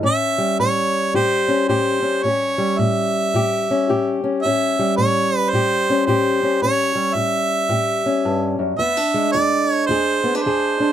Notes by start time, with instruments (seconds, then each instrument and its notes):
0.03 steel-string acoustic guitar A2 C#4, harmonica E5
0.38 steel-string acoustic guitar G3
0.60 steel-string acoustic guitar A2, harmonica C#5
1.14 steel-string acoustic guitar A2 G4, harmonica C5
1.48 steel-string acoustic guitar C#4
1.69 steel-string acoustic guitar A2 G4, harmonica C5
2.02 steel-string acoustic guitar C#4
2.23 steel-string acoustic guitar A2 C#4, harmonica C#5
2.58 steel-string acoustic guitar G3
2.79 steel-string acoustic guitar A2, harmonica E5
3.34 steel-string acoustic guitar A2 G4
3.71 steel-string acoustic guitar C#4
3.89 steel-string acoustic guitar A2 G4
4.24 steel-string acoustic guitar C#4
4.43 steel-string acoustic guitar A2 C#4, harmonica E5
4.79 steel-string acoustic guitar G3
4.97 steel-string acoustic guitar A2, harmonica C#5
5.38 harmonica B4
5.50 steel-string acoustic guitar A2, harmonica C5
5.55 steel-string acoustic guitar G4
5.90 steel-string acoustic guitar C#4
6.06 steel-string acoustic guitar A2 G4, harmonica C5
6.43 steel-string acoustic guitar C#4
6.62 steel-string acoustic guitar A2 C#4, harmonica C#5
6.95 steel-string acoustic guitar G3
7.14 steel-string acoustic guitar A2, harmonica E5
7.69 steel-string acoustic guitar A2 G4
8.06 steel-string acoustic guitar C#4
8.25 steel-string acoustic guitar G2
8.59 steel-string acoustic guitar F#2
8.79 steel-string acoustic guitar E2 B3, harmonica E5
8.97 steel-string acoustic guitar D4
9.14 steel-string acoustic guitar G#3
9.32 steel-string acoustic guitar E2, harmonica D5
9.70 harmonica C#5
9.86 steel-string acoustic guitar E2, harmonica C5
9.91 steel-string acoustic guitar G#4
10.24 steel-string acoustic guitar B3
10.35 steel-string acoustic guitar D4, harmonica B4
10.43 steel-string acoustic guitar E2, harmonica C5
10.47 steel-string acoustic guitar G#4
10.80 steel-string acoustic guitar D4